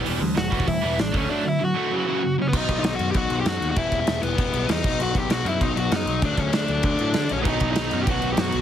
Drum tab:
CC |----------------|----------------|x-x-x-x-x-x-x-x-|x-x-x-x-x-x-x-x-|
HH |o---o---o---o---|----------------|----------------|----------------|
SD |----o-------o---|----------------|----o-------o---|----o-------o---|
BD |------ooo-----o-|----------------|o-o-----o-------|o-o-----o-----o-|

CC |x-x-x-x-x-x-x-x-|x-x-x-x-x-x-x-x-|x-x-x-x-x-x-x-x-|
HH |----------------|----------------|----------------|
SD |----o-------o---|----o-------o---|----o-------o---|
BD |--o-----o-------|o-o-----o-------|o-o-----o-------|